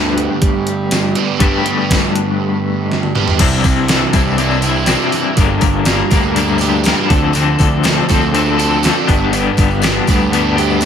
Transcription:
Already playing: picked electric bass D2, overdriven electric guitar G2 D3 B3, clean electric guitar G3 A3 D4 G4 B4
0.18 closed hi-hat
0.42 picked electric bass G3, kick, closed hi-hat
0.67 closed hi-hat
0.91 snare, closed hi-hat, tambourine
1.15 overdriven electric guitar G2 D3 G3 B3 D4 G4, closed hi-hat
1.39 picked electric bass G2, overdriven electric guitar G2 D3 B3, clean electric guitar G3 A3 D4 G4 B4, kick, closed hi-hat
1.66 closed hi-hat
1.90 kick, snare, closed hi-hat, tambourine
2.15 closed hi-hat
2.92 snare
3.03 high tom
3.15 overdriven electric guitar G2 D3 G3 B3 D4 G4, mid tom
3.28 floor tom
3.39 picked electric bass C2, clean electric guitar C3 G3 C4 D4 E4, kick, open hi-hat, crash, tambourine
3.63 picked electric bass C2, clean electric guitar C4 D4 E4, kick, open hi-hat, tambourine
3.88 overdriven electric guitar E3, clean electric guitar G3 C4 D4 E4, snare, open hi-hat, tambourine
4.13 picked electric bass C2, overdriven electric guitar G3, clean electric guitar C4 D4 E4, kick, open hi-hat, tambourine
4.37 clean electric guitar C3 G3 C4 D4 E4, open hi-hat
4.51 tambourine
4.61 clean electric guitar C4 D4 E4, open hi-hat, tambourine
4.76 tambourine
4.86 clean electric guitar G3 C4 D4 E4, snare, open hi-hat, tambourine
5.12 overdriven electric guitar E3, snare, open hi-hat, tambourine
5.36 picked electric bass G1, clean electric guitar G2 D3 G3 A#3 D4 A#4, kick, open hi-hat, tambourine
5.61 picked electric bass G1, clean electric guitar G3 A#3 D4 A#4, kick, open hi-hat, tambourine
5.85 clean electric guitar G3 A#3 D4 A#4, snare, open hi-hat, tambourine
6.10 picked electric bass D2, clean electric guitar G3 A#3 D4 A#4, kick, open hi-hat, tambourine
6.23 tambourine
6.35 clean electric guitar G2 D3 G3 A#3 D4 A#4, open hi-hat
6.47 tambourine
6.58 clean electric guitar D4 A#4, overdriven electric guitar G4, open hi-hat, tambourine
6.63 clean electric guitar G3 A#3
6.84 clean electric guitar G3 A#3 D4 A#4, snare, open hi-hat, tambourine
7.08 picked electric bass D2, clean electric guitar D3 F3 C4 D4 A4, kick, snare, open hi-hat, tambourine
7.33 picked electric bass D2, clean electric guitar D3 F3 C4 D4 A4, open hi-hat, tambourine
7.58 picked electric bass D2, clean electric guitar C4 D4 A4, kick, open hi-hat, tambourine
7.83 clean electric guitar F3 C4 D4 A4, snare, open hi-hat, tambourine
8.09 picked electric bass D2, clean electric guitar C4 D4 A4, kick, open hi-hat, tambourine
8.22 tambourine
8.33 clean electric guitar D3 F3 C4 D4 A4, open hi-hat
8.46 tambourine
8.58 clean electric guitar C4 D4 A4, open hi-hat, tambourine
8.71 tambourine
8.82 clean electric guitar F3 C4 D4 A4, snare, open hi-hat, tambourine
9.07 picked electric bass G1, clean electric guitar G2 D3 G3 B3 D4 G4, kick, open hi-hat, tambourine
9.31 clean electric guitar G2 D3 G3 B3 D4 G4, open hi-hat, tambourine
9.57 picked electric bass G1, clean electric guitar G3 B3 D4 G4, kick, open hi-hat, tambourine
9.71 tambourine
9.81 clean electric guitar G3 B3 D4 G4, snare, open hi-hat, tambourine
10.06 picked electric bass D2, clean electric guitar G3 B3 D4 G4, kick, open hi-hat, tambourine
10.20 tambourine
10.30 clean electric guitar G2 D3 G3 B3 D4 G4, open hi-hat, tambourine
10.56 clean electric guitar G3 B3 D4 G4, open hi-hat
10.69 tambourine
10.80 clean electric guitar G3 B3 D4, open hi-hat, tambourine

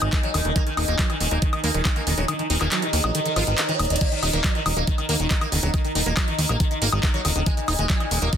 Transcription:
Already playing: synth drone D#4, ambient pad D#4 A#4 G#5
0.02 analog synth bass G#1, acid bass D#3, sitar D#3, closed hi-hat, high woodblock
0.13 sitar D#3, kick, clap, closed hi-hat
0.23 acid bass D#3, sitar F#3, closed hi-hat
0.34 analog synth bass D#1, acid bass D3, sitar D#3, open hi-hat, high woodblock
0.45 analog synth bass D#1, acid bass D3, sitar D#3, closed hi-hat
0.56 acid bass D#3, sitar A#3, kick, closed hi-hat, riser
0.67 acid bass D#3, sitar D#3, closed hi-hat
0.77 analog synth bass D#1, sitar D#3, acid bass D#4, open hi-hat, high woodblock
0.88 analog synth bass D#1, acid bass D#3, sitar A#3, closed hi-hat
0.99 sitar D#3, acid bass F#3, kick, clap, closed hi-hat
1.10 acid bass D#3, sitar D#3, closed hi-hat, high woodblock
1.20 analog synth bass D#1, acid bass D#3, sitar D#3, open hi-hat
1.31 analog synth bass D#1, acid bass F#3, sitar A#3, closed hi-hat
1.42 acid bass D#3, sitar D#3, kick, closed hi-hat
1.53 acid bass D#3, sitar D#3, closed hi-hat, high woodblock
1.64 analog synth bass D#2, acid bass A#3, sitar A#3, open hi-hat
1.74 analog synth bass D#1, acid bass D#3, sitar D#3, closed hi-hat
1.85 sitar D#3, kick, clap, closed hi-hat, high woodblock
1.96 acid bass D#3, sitar A#3, closed hi-hat
2.07 analog synth bass D#1, acid bass D3, sitar D#3, open hi-hat
2.18 analog synth bass D#1, acid bass D3, sitar F#3, closed hi-hat
2.28 acid bass D#3, sitar D#3, closed hi-hat, high woodblock
2.39 sitar D#3, acid bass D#3, closed hi-hat
2.50 analog synth bass D#1, sitar D#3, acid bass D#4, open hi-hat
2.61 analog synth bass D#1, acid bass D#3, sitar A#3, clap, closed hi-hat, high woodblock
2.72 sitar D#3, acid bass F#3, clap, closed hi-hat
2.82 sitar D#3, acid bass D#3, closed hi-hat
2.93 analog synth bass D#2, sitar D#3, acid bass D#3, open hi-hat
3.04 analog synth bass A#1, sitar F#3, acid bass F#3, closed hi-hat, high woodblock
3.15 sitar D#3, acid bass D#3, closed hi-hat
3.26 sitar D#3, acid bass D#3, closed hi-hat
3.36 analog synth bass G#1, sitar F3, acid bass F4, open hi-hat, high woodblock
3.47 analog synth bass G#1, sitar D#3, acid bass D#3, closed hi-hat
3.58 sitar D#3, clap, closed hi-hat
3.69 sitar D#3, acid bass D#3, closed hi-hat
3.79 analog synth bass D#1, sitar D#3, acid bass D#3, closed hi-hat, open hi-hat, high woodblock
3.85 closed hi-hat
3.90 analog synth bass D#1, sitar D#3, acid bass D#3, closed hi-hat
3.96 closed hi-hat
4.01 acid bass D#3, sitar A#3, synth drone D#4, kick, closed hi-hat, crash
4.12 sitar D#3, acid bass D#3, closed hi-hat
4.23 analog synth bass D#1, sitar D#3, acid bass D#4, open hi-hat, high woodblock
4.33 analog synth bass D#1, acid bass D#3, sitar A#3, closed hi-hat
4.44 sitar D#3, acid bass F#3, kick, clap, closed hi-hat
4.55 sitar D#3, acid bass D#3, closed hi-hat
4.66 analog synth bass D#1, acid bass D#3, sitar D#3, open hi-hat, high woodblock
4.77 analog synth bass D#1, acid bass F#3, sitar A#3, closed hi-hat
4.87 acid bass D#3, sitar D#3, kick, closed hi-hat
4.98 sitar D#3, acid bass D#3, closed hi-hat, high woodblock
5.09 analog synth bass D#2, acid bass A#3, sitar A#3, open hi-hat
5.20 analog synth bass D#1, sitar D#3, acid bass D#3, closed hi-hat
5.31 sitar D#3, kick, clap, closed hi-hat
5.41 acid bass D#3, sitar A#3, closed hi-hat, high woodblock
5.52 analog synth bass D#1, acid bass D3, sitar D#3, open hi-hat
5.63 analog synth bass D#1, acid bass D3, sitar F#3, closed hi-hat
5.74 acid bass D#3, sitar D#3, kick, closed hi-hat, high woodblock
5.84 acid bass D#3, sitar D#3, closed hi-hat
5.95 analog synth bass D#1, sitar D#3, acid bass D#4, open hi-hat
6.06 analog synth bass D#1, acid bass D#3, sitar A#3, closed hi-hat
6.17 sitar D#3, acid bass F#3, kick, clap, closed hi-hat, high woodblock
6.28 acid bass D#3, sitar D#3, closed hi-hat
6.38 analog synth bass D#2, acid bass D#3, sitar D#3, open hi-hat
6.49 analog synth bass A#1, acid bass F#3, sitar A#3, closed hi-hat, high woodblock
6.60 acid bass D#3, sitar D#3, kick, closed hi-hat
6.71 sitar D#3, acid bass D#3, closed hi-hat
6.82 analog synth bass G#1, sitar A#3, acid bass A#3, open hi-hat
6.92 analog synth bass G#1, sitar D#3, acid bass D#3, closed hi-hat, high woodblock
7.03 sitar D#3, kick, clap, closed hi-hat
7.14 acid bass D#3, sitar F#3, closed hi-hat
7.25 analog synth bass D#1, acid bass D3, sitar D#3, open hi-hat, high woodblock
7.35 analog synth bass D#1, acid bass D3, sitar D#3, closed hi-hat
7.46 acid bass D#3, sitar G#3, kick, closed hi-hat
7.57 sitar A#2, acid bass D#3, closed hi-hat
7.68 analog synth bass D#1, sitar A#2, acid bass D#4, open hi-hat, high woodblock
7.79 analog synth bass D#1, acid bass D#3, sitar G#3, closed hi-hat
7.90 acid bass F#3, kick, clap, closed hi-hat
8.00 sitar A#2, acid bass D#3, closed hi-hat, high woodblock
8.11 analog synth bass D#1, sitar A#2, acid bass D#3, open hi-hat
8.22 analog synth bass D#1, acid bass F#3, sitar A#3, closed hi-hat
8.33 acid bass D#3, kick, closed hi-hat

